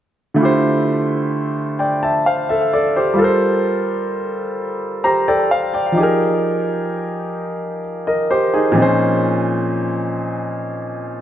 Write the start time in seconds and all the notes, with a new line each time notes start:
0.34 D3 A3 E4
0.40 F4 G4
0.45 C5
1.79 D5 G5
2.03 E5 A5
2.26 C5 F5
2.49 A4 E5
2.73 A4 D5
2.96 G4 C5
3.14 G3 F4
3.19 A4 A#4
3.24 C5
5.04 G4 C5 A#5
5.28 A4 D5 G5
5.51 C5 F5
5.74 D5 G5
5.92 F3 D#4
5.97 G4 G#4
6.03 A#4
8.07 A#4 D#5
8.31 G4 C5
8.54 D#4 G#4
8.72 A#2 F3 C4
8.77 D#4 G#4
8.82 C#4 C5